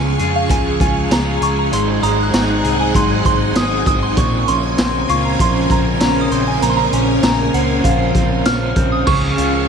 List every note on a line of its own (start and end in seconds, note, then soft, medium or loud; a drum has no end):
0.00 0.15 C#2 medium
0.00 0.19 C#3 medium
0.00 1.68 C#3 medium
0.00 1.72 C#3 medium
0.00 0.49 F3 medium
0.00 0.48 G#3 medium
0.00 1.11 G#3 medium
0.00 0.20 C#4 medium
0.00 0.19 F4 medium
0.00 0.79 F4 medium
0.00 0.18 G#4 medium
0.00 4.13 G#4 medium
0.00 1.68 F5 medium
0.00 0.36 G#5 medium
0.00 1.70 C#6 medium
0.18 0.46 F2 medium
0.18 0.48 C#4 soft
0.18 0.49 F4 soft
0.18 0.49 G#4 soft
0.18 2.64 G#4 medium
0.18 closed hi-hat medium
0.36 0.51 F5 medium
0.48 0.77 C#2 loud
0.48 1.78 F3 medium
0.48 1.09 G#3 medium
0.48 1.10 C#4 medium
0.48 1.11 F4 medium
0.48 1.13 G#4 medium
0.48 0.80 G#5 medium
0.48 kick medium
0.48 closed hi-hat medium
0.80 1.07 C#2 medium
0.80 1.40 F4 medium
0.80 1.12 G#5 medium
0.80 kick medium
0.80 closed hi-hat soft
1.10 1.38 C#2 medium
1.10 1.72 G#3 medium
1.10 2.03 G#3 medium
1.10 1.72 C#4 medium
1.10 1.73 F4 medium
1.10 1.73 G#4 medium
1.10 1.43 A#5 medium
1.10 snare loud
1.10 closed hi-hat medium
1.10 tambourine medium
1.41 1.68 C#2 loud
1.41 1.78 F4 medium
1.41 1.58 C#6 medium
1.41 closed hi-hat medium
1.59 1.74 A#5 medium
1.71 1.99 G#1 medium
1.71 2.63 G#2 medium
1.71 4.17 G#2 medium
1.71 2.64 D#3 medium
1.71 2.64 F#3 medium
1.71 2.65 C4 medium
1.71 4.15 D#4 medium
1.71 2.63 D#4 medium
1.71 2.61 G#4 medium
1.71 4.15 F#5 medium
1.71 9.03 G#5 medium
1.71 2.04 C6 medium
1.71 closed hi-hat medium
2.03 2.30 G#1 medium
2.03 3.55 G#3 medium
2.03 2.33 A#5 medium
2.03 3.02 D#6 medium
2.03 closed hi-hat medium
2.23 3.19 F#6 medium
2.33 2.60 G#1 medium
2.33 3.25 C4 medium
2.33 2.81 A#5 medium
2.33 snare loud
2.33 closed hi-hat medium
2.33 tambourine medium
2.63 2.91 C2 medium
2.63 2.92 F#3 soft
2.63 2.93 C4 soft
2.63 2.95 D#4 soft
2.63 2.94 G#4 soft
2.63 4.23 G#4 medium
2.63 closed hi-hat medium
2.80 2.96 G#5 medium
2.93 3.22 G#1 loud
2.93 3.54 F#3 medium
2.93 4.23 F#3 medium
2.93 3.56 C4 medium
2.93 3.56 D#4 medium
2.93 3.57 G#4 medium
2.93 3.25 C6 medium
2.93 kick medium
2.93 closed hi-hat medium
3.25 3.52 G#1 medium
3.25 3.86 C4 medium
3.25 3.57 C6 medium
3.25 kick medium
3.25 closed hi-hat soft
3.55 3.83 G#1 medium
3.55 4.17 F#3 medium
3.55 4.23 G#3 medium
3.55 4.17 C4 medium
3.55 4.18 D#4 medium
3.55 4.18 G#4 medium
3.55 3.86 D#6 loud
3.55 snare loud
3.55 closed hi-hat medium
3.55 tambourine medium
3.86 4.13 G#1 loud
3.86 4.51 C4 medium
3.86 4.03 D#6 medium
3.86 kick loud
3.86 closed hi-hat medium
4.03 4.18 C6 medium
4.16 4.44 A#1 loud
4.16 5.09 A#2 medium
4.16 6.61 A#2 medium
4.16 9.03 C#3 medium
4.16 6.62 F3 medium
4.16 5.09 A#3 medium
4.16 5.10 C#4 medium
4.16 5.09 F4 medium
4.16 9.03 A#4 medium
4.16 4.49 C#6 medium
4.16 kick loud
4.16 closed hi-hat medium
4.48 4.75 A#1 medium
4.48 6.00 C#4 medium
4.48 4.78 C6 medium
4.48 closed hi-hat medium
4.78 5.05 A#1 medium
4.78 5.69 C4 medium
4.78 5.10 C6 medium
4.78 snare loud
4.78 closed hi-hat medium
4.78 tambourine medium
5.08 5.36 C#2 medium
5.08 5.39 C#4 soft
5.08 8.59 F4 medium
5.08 5.40 F4 soft
5.08 5.39 C5 soft
5.08 5.25 C#6 medium
5.08 closed hi-hat medium
5.12 5.37 A#3 soft
5.25 5.41 A#5 medium
5.38 5.67 A#1 loud
5.38 7.85 F3 medium
5.38 5.99 A#3 medium
5.38 6.01 C#4 medium
5.38 6.02 F4 medium
5.38 6.02 C5 medium
5.38 5.72 C6 medium
5.38 kick medium
5.38 closed hi-hat medium
5.70 5.97 A#1 medium
5.70 6.30 C4 medium
5.70 6.01 A#5 medium
5.70 kick medium
5.70 closed hi-hat soft
6.00 6.28 A#1 medium
6.00 6.62 A#3 medium
6.00 6.93 C#4 medium
6.00 6.63 C#4 medium
6.00 6.63 F4 medium
6.00 6.63 C5 medium
6.00 6.99 A#5 medium
6.00 6.33 A#5 medium
6.00 snare loud
6.00 closed hi-hat medium
6.00 tambourine medium
6.21 7.17 D#6 soft
6.31 6.58 A#1 loud
6.31 7.22 C4 medium
6.31 6.47 C6 medium
6.31 closed hi-hat soft
6.48 6.63 G#5 medium
6.61 6.89 A#1 loud
6.61 7.54 A#2 medium
6.61 9.06 A#2 medium
6.61 9.06 F3 medium
6.61 7.54 A#3 medium
6.61 7.56 C#4 medium
6.61 7.87 F4 medium
6.61 7.52 C5 medium
6.61 6.69 A#5 medium
6.61 closed hi-hat medium
6.70 6.76 C6 medium
6.77 6.92 A#5 medium
6.92 7.19 A#1 medium
6.92 8.46 C#4 medium
6.92 7.25 G#5 medium
6.92 closed hi-hat medium
7.23 7.50 A#1 medium
7.23 8.14 C4 medium
7.23 7.52 A#5 medium
7.23 snare loud
7.23 closed hi-hat medium
7.23 tambourine medium
7.53 7.81 C#2 medium
7.53 7.83 A#3 soft
7.53 7.85 C#4 soft
7.53 7.84 C5 soft
7.53 7.86 F#5 medium
7.53 closed hi-hat medium
7.84 8.11 A#1 medium
7.84 9.68 F3 medium
7.84 8.44 A#3 medium
7.84 8.46 C#4 medium
7.84 8.48 F4 medium
7.84 8.48 C5 medium
7.84 8.72 F5 medium
7.84 kick medium
7.84 closed hi-hat medium
8.15 8.42 A#1 medium
8.15 8.75 C4 medium
8.15 kick medium
8.15 closed hi-hat soft
8.45 8.73 A#1 medium
8.45 9.07 A#3 medium
8.45 9.68 C#4 medium
8.45 9.07 C#4 medium
8.45 9.08 F4 medium
8.45 9.09 C5 medium
8.45 8.93 F6 loud
8.45 snare loud
8.45 closed hi-hat medium
8.45 tambourine medium
8.76 9.03 A#1 medium
8.76 9.13 C4 medium
8.76 kick medium
8.76 closed hi-hat soft
8.92 9.06 D#6 medium
9.06 9.34 C#2 loud
9.06 9.37 C#3 medium
9.06 9.68 C#3 medium
9.06 9.38 G#3 medium
9.06 9.68 C#4 medium
9.06 9.38 C#4 medium
9.06 9.37 F4 medium
9.06 9.68 G#4 medium
9.06 9.35 G#4 medium
9.06 9.68 F5 medium
9.06 9.68 C#6 loud
9.06 9.68 C#6 medium
9.06 9.68 F6 medium
9.06 kick loud
9.06 crash loud
9.36 9.65 C#2 loud
9.36 9.68 C#4 soft
9.36 9.68 F4 medium
9.36 9.68 F4 soft
9.36 9.68 G#4 medium
9.36 closed hi-hat medium